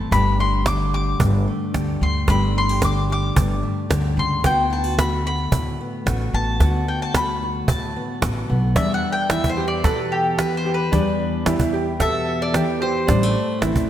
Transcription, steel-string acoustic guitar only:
0.00 0.11 E2 medium
0.00 0.12 A3 medium
0.00 0.12 E4 medium
0.11 1.20 G2 medium
0.11 1.47 A3 medium
0.11 0.65 D4 medium
0.11 0.39 G4 medium
0.39 0.93 G4 medium
0.65 1.73 D3 medium
0.65 2.30 D4 soft
0.93 1.74 G4 medium
1.20 2.25 G2 medium
1.48 2.01 A3 medium
1.75 2.81 D3 medium
1.75 2.25 G4 medium
2.02 2.29 A3 soft
2.29 3.34 G2 medium
2.29 3.62 A3 medium
2.29 2.83 D4 medium
2.29 2.55 G4 medium
2.55 2.69 E4 medium
2.69 3.09 G4 medium
2.82 3.88 D3 soft
2.82 4.44 D4 medium
3.10 3.89 G4 medium
3.36 4.41 G2 medium
3.63 4.17 A3 medium
3.89 4.43 D3 medium
3.89 4.41 G4 medium
4.17 4.48 A3 medium
4.44 6.60 D3 medium
4.44 5.80 B3 medium
4.44 4.70 F#4 medium
4.70 4.84 E4 medium
4.84 4.97 F#4 medium
4.97 6.05 A3 medium
4.97 5.25 F#4 medium
5.26 6.06 F#4 medium
5.52 6.60 A2 medium
5.81 6.34 B3 medium
6.06 6.57 A3 medium
6.06 6.57 F#4 medium
6.35 6.61 B3 soft
6.61 8.77 D3 medium
6.61 7.95 B3 medium
6.61 6.88 F#4 medium
6.89 7.14 F#4 medium
7.15 8.22 A3 soft
7.15 7.41 F#4 medium
7.42 8.22 F#4 medium
7.68 8.76 A2 medium
7.96 8.49 B3 medium
8.23 8.73 A3 soft
8.23 8.74 F#4 soft
8.50 9.29 B3 medium
8.77 10.91 E2 medium
8.77 10.92 G3 medium
9.30 10.37 E3 medium
9.30 10.37 B3 medium
9.57 10.65 G4 medium
9.84 10.38 B2 medium
10.37 11.46 E3 medium
10.37 13.08 B3 medium
10.66 10.89 G4 medium
10.92 13.08 E2 medium
10.92 13.07 G3 medium
11.46 12.54 E3 medium
11.46 11.72 G4 medium
11.74 12.54 G4 medium
12.01 12.54 B2 medium
12.54 13.62 E3 medium
12.54 12.82 G4 medium
12.83 13.06 G4 medium
13.09 13.90 A2 medium
13.09 13.23 G3 medium
13.23 13.90 A3 soft
13.63 13.90 E3 medium
13.63 13.90 C4 medium

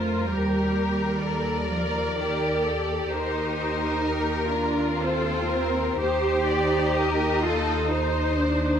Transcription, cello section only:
0.00 0.31 A3 medium
0.32 1.68 G3 medium
1.71 2.18 F3 medium
2.18 2.64 D#3 medium
3.11 4.48 D#4 medium
4.52 5.00 D4 medium
5.00 6.00 C4 medium
6.00 7.41 G4 medium
7.44 7.91 F4 medium
7.90 8.38 D#4 medium
8.38 8.80 D4 medium

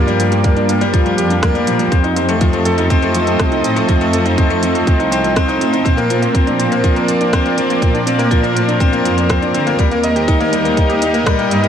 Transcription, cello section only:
0.00 1.10 G2 loud
1.18 1.59 F2 loud
1.67 1.82 A#2 medium
1.92 3.32 F2 loud
3.39 3.54 C2 loud
3.64 3.79 A2 loud
3.89 4.79 F2 loud
4.87 5.53 C2 medium
5.61 5.76 A2 medium
5.85 7.25 A#2 loud
7.82 8.97 A#2 loud
9.05 9.46 F2 medium
9.54 9.69 D3 medium
9.79 11.19 D#2 loud
11.26 11.41 A#2 loud
11.51 11.66 G2 loud

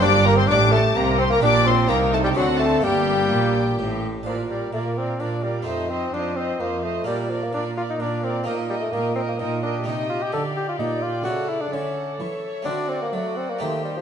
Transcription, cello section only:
0.03 0.50 G2 medium
0.50 0.96 A2 medium
0.97 1.42 C3 medium
1.43 1.89 A#2 medium
1.90 2.37 C3 medium
2.37 2.84 D3 medium
2.84 3.31 G2 medium
3.32 3.79 A#2 medium
3.79 4.25 A2 medium
4.26 4.68 A#2 medium
4.73 5.15 A#2 soft
5.19 5.61 A#2 soft
5.66 6.08 F2 soft
6.13 6.54 F2 soft
6.60 7.01 F2 soft
7.07 7.48 A#2 soft
7.53 7.94 A#2 soft
8.00 8.41 A#2 soft
8.47 8.88 A#2 medium
8.94 9.34 A#2 medium
9.40 9.81 A#2 medium
9.87 10.30 C3 medium
10.33 10.76 D3 medium
10.80 11.23 A#2 medium
11.26 11.69 C#3 medium
11.73 12.16 D3 medium
12.19 12.63 E3 medium
12.66 13.10 D3 medium
13.13 13.57 F#3 medium
13.60 14.01 D#3 soft

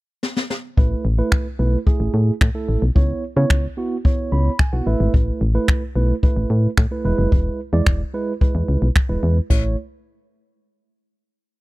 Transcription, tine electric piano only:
0.77 1.05 A3 medium
0.77 1.05 E4 medium
0.77 1.05 B4 medium
1.18 1.46 A3 medium
1.18 1.46 E4 medium
1.18 1.46 B4 medium
1.59 1.77 A3 medium
1.59 1.78 E4 medium
1.59 1.78 B4 medium
1.86 2.32 A3 medium
1.86 2.33 E4 medium
1.86 2.33 G#4 medium
2.55 2.82 A3 medium
2.55 2.82 E4 medium
2.55 2.82 A4 medium
2.95 3.23 B3 medium
2.95 3.23 E4 medium
2.95 3.23 C#5 medium
3.36 3.64 B3 medium
3.36 3.64 E4 medium
3.36 3.64 C#5 medium
3.77 3.96 B3 medium
3.77 3.96 E4 medium
3.77 3.96 F#4 medium
4.05 4.51 B3 medium
4.05 4.51 E4 medium
4.05 4.51 C#5 medium
4.32 4.57 B5 medium
4.59 4.72 G#5 medium
4.73 4.86 B3 medium
4.73 4.85 E4 medium
4.73 4.87 F#4 medium
4.73 4.86 F#5 medium
4.86 5.41 A3 medium
4.86 5.41 E4 medium
4.86 5.41 B4 medium
4.86 5.12 E5 medium
5.55 5.82 A3 medium
5.55 5.82 E4 medium
5.55 5.82 B4 medium
5.96 6.14 A3 medium
5.96 6.14 E4 medium
5.96 6.14 B4 medium
6.23 6.69 A3 medium
6.23 6.69 E4 medium
6.23 6.69 B4 medium
6.91 7.05 A3 medium
6.91 7.04 E4 medium
6.91 7.04 B4 medium
7.05 7.59 G#3 medium
7.05 7.59 E4 medium
7.05 7.60 B4 loud
7.73 8.00 G#3 medium
7.73 8.01 E4 medium
7.73 8.01 D5 medium
8.14 8.32 G#3 medium
8.14 8.32 E4 medium
8.14 8.32 B4 medium
8.41 8.87 G#3 medium
8.41 8.87 E4 medium
8.41 8.87 B4 medium
9.09 9.37 G#3 medium
9.09 9.37 E4 medium
9.09 9.37 B4 medium
9.50 9.75 A3 medium
9.50 9.76 E4 medium
9.50 9.76 C#5 medium

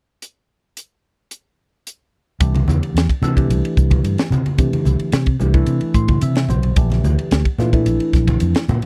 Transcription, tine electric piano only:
2.40 3.08 E3 medium
2.40 3.08 A3 medium
2.40 3.08 D4 medium
2.40 3.08 G4 medium
3.22 3.34 E3 medium
3.22 3.34 A3 medium
3.22 3.34 D4 medium
3.22 3.34 A4 medium
3.36 4.26 E3 medium
3.36 4.26 A3 medium
3.36 4.26 D4 medium
3.36 4.26 G4 medium
4.58 5.26 E3 medium
4.58 5.26 A3 medium
4.58 5.26 D4 medium
4.58 5.26 G4 medium
5.40 5.52 E3 medium
5.40 5.52 A3 medium
5.40 5.52 D4 medium
5.40 5.53 G4 medium
5.54 6.44 E3 medium
5.54 6.44 A3 medium
5.54 6.44 D4 medium
5.54 6.44 E4 medium
5.95 6.20 C6 medium
6.23 6.48 E5 medium
6.50 6.75 C5 medium
6.77 7.45 E3 medium
6.77 7.45 A3 medium
6.77 7.45 D4 medium
6.77 7.45 G4 medium
7.59 7.71 E3 medium
7.59 7.71 A3 medium
7.59 7.71 D4 medium
7.59 7.71 F4 medium
7.73 8.63 E3 medium
7.73 8.63 A3 medium
7.73 8.63 D4 medium
7.73 8.63 E4 medium

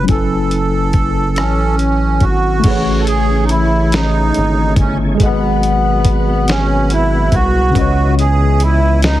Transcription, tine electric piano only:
0.03 2.58 F#3 medium
0.03 2.59 C#4 medium
0.08 2.60 E4 soft
0.08 2.62 A4 soft
0.08 2.61 G#5 soft
0.15 2.63 B4 medium
2.59 5.15 E3 medium
2.59 5.13 A3 medium
2.65 5.16 G#4 medium
2.65 5.18 B4 medium
2.71 5.19 C#5 medium
5.15 7.69 G#3 medium
5.15 7.70 G#4 medium
5.20 5.27 A4 soft
5.20 7.73 D#5 medium
5.26 7.74 B4 medium
5.26 7.74 F#5 medium
7.70 9.20 C#3 medium
7.70 9.20 C#4 medium
7.76 9.20 B4 medium
7.76 9.20 D#5 medium
7.81 9.20 C#5 medium

